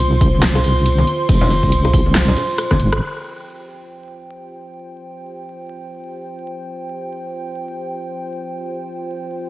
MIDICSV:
0, 0, Header, 1, 4, 480
1, 0, Start_track
1, 0, Tempo, 500000
1, 9115, End_track
2, 0, Start_track
2, 0, Title_t, "Analog synth pad"
2, 0, Program_c, 0, 89
2, 0, Note_on_c, 0, 65, 81
2, 0, Note_on_c, 0, 72, 77
2, 0, Note_on_c, 0, 84, 91
2, 2856, Note_off_c, 0, 65, 0
2, 2857, Note_off_c, 0, 72, 0
2, 2879, Note_off_c, 0, 84, 0
2, 2894, Note_on_c, 0, 65, 75
2, 2894, Note_on_c, 0, 79, 85
2, 2896, Note_on_c, 0, 72, 69
2, 9115, Note_off_c, 0, 65, 0
2, 9115, Note_off_c, 0, 72, 0
2, 9115, Note_off_c, 0, 79, 0
2, 9115, End_track
3, 0, Start_track
3, 0, Title_t, "Wobble bass"
3, 0, Program_c, 1, 39
3, 0, Note_on_c, 1, 36, 102
3, 1019, Note_off_c, 1, 36, 0
3, 1237, Note_on_c, 1, 29, 102
3, 1550, Note_off_c, 1, 29, 0
3, 1565, Note_on_c, 1, 36, 104
3, 2261, Note_off_c, 1, 36, 0
3, 2687, Note_on_c, 1, 32, 90
3, 2880, Note_off_c, 1, 32, 0
3, 9115, End_track
4, 0, Start_track
4, 0, Title_t, "Drums"
4, 202, Note_on_c, 9, 36, 106
4, 202, Note_on_c, 9, 46, 99
4, 298, Note_off_c, 9, 36, 0
4, 298, Note_off_c, 9, 46, 0
4, 330, Note_on_c, 9, 63, 56
4, 408, Note_on_c, 9, 38, 118
4, 408, Note_on_c, 9, 42, 76
4, 408, Note_on_c, 9, 51, 70
4, 426, Note_off_c, 9, 63, 0
4, 504, Note_off_c, 9, 38, 0
4, 504, Note_off_c, 9, 42, 0
4, 504, Note_off_c, 9, 51, 0
4, 531, Note_on_c, 9, 60, 78
4, 616, Note_on_c, 9, 42, 52
4, 627, Note_off_c, 9, 60, 0
4, 712, Note_off_c, 9, 42, 0
4, 823, Note_on_c, 9, 42, 79
4, 823, Note_on_c, 9, 51, 50
4, 919, Note_off_c, 9, 42, 0
4, 919, Note_off_c, 9, 51, 0
4, 943, Note_on_c, 9, 63, 96
4, 1030, Note_on_c, 9, 42, 52
4, 1039, Note_off_c, 9, 63, 0
4, 1126, Note_off_c, 9, 42, 0
4, 1237, Note_on_c, 9, 42, 84
4, 1237, Note_on_c, 9, 51, 69
4, 1238, Note_on_c, 9, 36, 122
4, 1333, Note_off_c, 9, 42, 0
4, 1333, Note_off_c, 9, 51, 0
4, 1334, Note_off_c, 9, 36, 0
4, 1355, Note_on_c, 9, 64, 99
4, 1444, Note_on_c, 9, 42, 56
4, 1446, Note_on_c, 9, 63, 85
4, 1451, Note_off_c, 9, 64, 0
4, 1540, Note_off_c, 9, 42, 0
4, 1542, Note_off_c, 9, 63, 0
4, 1566, Note_on_c, 9, 36, 64
4, 1652, Note_on_c, 9, 42, 84
4, 1652, Note_on_c, 9, 51, 51
4, 1662, Note_off_c, 9, 36, 0
4, 1748, Note_off_c, 9, 42, 0
4, 1748, Note_off_c, 9, 51, 0
4, 1773, Note_on_c, 9, 60, 68
4, 1857, Note_on_c, 9, 46, 100
4, 1858, Note_on_c, 9, 36, 109
4, 1869, Note_off_c, 9, 60, 0
4, 1953, Note_off_c, 9, 46, 0
4, 1954, Note_off_c, 9, 36, 0
4, 1977, Note_on_c, 9, 60, 40
4, 1979, Note_on_c, 9, 63, 61
4, 2064, Note_on_c, 9, 38, 119
4, 2064, Note_on_c, 9, 42, 81
4, 2064, Note_on_c, 9, 51, 68
4, 2073, Note_off_c, 9, 60, 0
4, 2075, Note_off_c, 9, 63, 0
4, 2160, Note_off_c, 9, 38, 0
4, 2160, Note_off_c, 9, 42, 0
4, 2160, Note_off_c, 9, 51, 0
4, 2192, Note_on_c, 9, 64, 97
4, 2271, Note_on_c, 9, 42, 53
4, 2279, Note_on_c, 9, 60, 53
4, 2288, Note_off_c, 9, 64, 0
4, 2367, Note_off_c, 9, 42, 0
4, 2375, Note_off_c, 9, 60, 0
4, 2479, Note_on_c, 9, 37, 65
4, 2479, Note_on_c, 9, 42, 83
4, 2479, Note_on_c, 9, 51, 49
4, 2575, Note_off_c, 9, 37, 0
4, 2575, Note_off_c, 9, 42, 0
4, 2575, Note_off_c, 9, 51, 0
4, 2599, Note_on_c, 9, 37, 64
4, 2599, Note_on_c, 9, 60, 39
4, 2602, Note_on_c, 9, 36, 62
4, 2606, Note_on_c, 9, 63, 96
4, 2684, Note_on_c, 9, 42, 51
4, 2695, Note_off_c, 9, 37, 0
4, 2695, Note_off_c, 9, 60, 0
4, 2698, Note_off_c, 9, 36, 0
4, 2702, Note_off_c, 9, 63, 0
4, 2780, Note_off_c, 9, 42, 0
4, 2807, Note_on_c, 9, 37, 90
4, 2807, Note_on_c, 9, 42, 38
4, 2903, Note_off_c, 9, 37, 0
4, 2903, Note_off_c, 9, 42, 0
4, 9115, End_track
0, 0, End_of_file